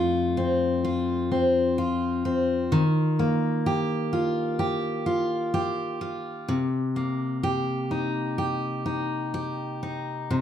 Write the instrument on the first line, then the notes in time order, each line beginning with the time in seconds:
steel-string acoustic guitar
Already playing: F2 A3 C4 F4
0.37 C4
0.84 F4
1.31 C4
1.78 F4
2.25 C4
2.72 D#3
3.19 A#3
3.66 G4
4.13 F4
4.59 G4
5.06 F4
5.54 G4
6.01 F4
6.48 C3
6.96 A#3
7.43 G4
7.91 D#4
8.38 G4
8.86 D#4
9.34 G4
9.83 D#4
10.31 C3